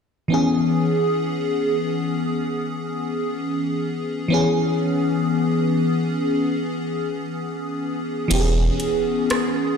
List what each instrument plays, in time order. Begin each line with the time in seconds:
0.28 fm electric piano E3 B3 C#4
0.34 fm electric piano G#4
4.28 fm electric piano E3 B3 C#4
4.34 fm electric piano G#4
8.28 sub bass E1, fm electric piano E3 B3 C#4, closed hi-hat, crash
8.34 fm electric piano G4
8.40 fm electric piano G#4
8.80 closed hi-hat
9.30 cross-stick, closed hi-hat